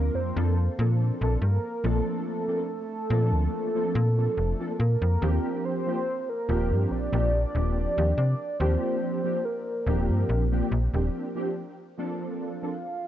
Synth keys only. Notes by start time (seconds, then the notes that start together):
Already playing: F3 A#3 C4 D4 A#4
0.36 F3 A#3 C4 D4 A4
0.78 F3 A#3 C4 D4 A4
1.21 F3 A#3 C4 D4 A4
1.83 F3 A#3 C4 D4 A4
2.47 F3 A#3 C4 D4 A4
3.10 F3 A#3 C4 D4 A4
3.74 F3 A#3 C4 D4 A4
4.17 F3 A#3 C4 D4 A4
4.59 F3 A#3 C4 D4 A4
5.21 F3 A#3 C4 D4 G4
5.86 F3 A#3 C4 D4 G4
6.48 F3 A#3 C4 D4 G4
7.12 F3 A#3 C4 D4 G4
7.55 F3 A#3 C4 D4 G4
7.96 F3 A#3 C4 D4 G4
8.60 F3 A#3 C4 D4 G4
9.23 F3 A#3 C4 D4 G4
9.86 F3 A#3 C4 D4 G4
10.51 F3 A#3 C4 D4 G4
10.93 F3 A#3 C4 D4 G4
11.35 F3 A#3 C4 D4 G4
11.97 F3 A#3 C4 D4 A4
12.62 F3 A#3 C4 D4 A4